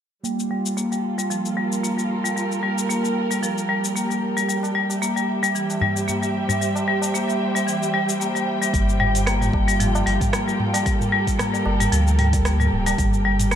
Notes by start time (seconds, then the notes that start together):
0.24 G3 A#3, cabasa
0.30 F4
0.40 cabasa
0.51 G3
0.66 cabasa
0.71 A4
0.77 A#3, cabasa
0.92 G3, cabasa
1.18 G3, cabasa
1.30 F3, cabasa
1.46 cabasa
1.51 A#4
1.57 G3
1.72 cabasa
1.83 A#3, cabasa
1.98 G3, cabasa
2.16 G5
2.24 G3, cabasa
2.36 G3, cabasa
2.52 cabasa
2.63 G3
2.78 cabasa
2.89 A#3, cabasa
3.04 G3, cabasa
3.31 G3, cabasa
3.43 F3, cabasa
3.58 cabasa
3.69 G3
3.85 cabasa
3.96 A#3, cabasa
4.10 G3, cabasa
4.37 G3, cabasa
4.49 G3, cabasa
4.63 tabla na, cabasa
4.71 G4
4.75 G3
4.83 E5
4.90 tabla na, cabasa
5.02 A#3, cabasa
5.16 G3, cabasa
5.42 G3 C5, cabasa
5.55 E3, cabasa
5.70 tabla na, cabasa
5.81 G3, tabla ge
5.96 tabla tin, cabasa
6.08 A#3, tabla tin, tabla ge, cabasa
6.23 G3, cabasa
6.36 tabla tin
6.49 G3, tabla ge, cabasa
6.61 G3, cabasa
6.76 tabla na, cabasa
6.87 G3, tabla tin
7.02 tabla na, cabasa
7.14 A#3, tabla tin, cabasa
7.29 G3, cabasa
7.41 tabla tin
7.54 G3, tabla tin, cabasa
7.67 E3, cabasa
7.83 cabasa
7.94 G3
8.09 cabasa
8.20 A#3, cabasa
8.35 G3, tabla na, cabasa
8.61 G3, cabasa
8.74 G1 G3, kick, open hi-hat, cabasa
8.89 cabasa
8.94 F4
9.00 G3, mid tom
9.15 open hi-hat, tabla tin, cabasa
9.27 A#3, cross-stick, open hi-hat, cabasa
9.41 G3, mid tom, tabla tin, cabasa
9.53 G1 A4, kick, tabla na
9.68 G3, open hi-hat, cabasa
9.80 F3, mid tom, open hi-hat, tabla tin, cabasa
9.95 tabla na, cabasa
10.06 G1 G3 A#4, open hi-hat
10.21 kick, mid tom, open hi-hat, cabasa
10.33 A#3, cross-stick, open hi-hat, cabasa
10.47 G3, cabasa
10.59 mid tom, tabla tin
10.74 G3, open hi-hat, tabla na, cabasa
10.86 G3, kick, open hi-hat, cabasa
11.01 mid tom, cabasa
11.13 G3
11.27 kick, open hi-hat, tabla tin, cabasa
11.39 A#3, cross-stick, mid tom, open hi-hat, cabasa
11.54 G3, tabla tin, cabasa
11.66 G1, tabla na
11.80 G3, mid tom, open hi-hat, cabasa
11.92 D2 F3, open hi-hat, cabasa
12.08 cabasa
12.19 G3, mid tom, open hi-hat
12.33 kick, open hi-hat, tabla tin, cabasa
12.45 A#3, cross-stick, open hi-hat, cabasa
12.60 G3, mid tom, cabasa
12.72 D1, tabla tin
12.86 G3, open hi-hat, tabla na, cabasa
12.98 G1 G3, kick, mid tom, open hi-hat, cabasa
13.14 G4, cabasa
13.25 G3
13.39 mid tom, open hi-hat, tabla tin, cabasa
13.51 A#3, cross-stick, open hi-hat, cabasa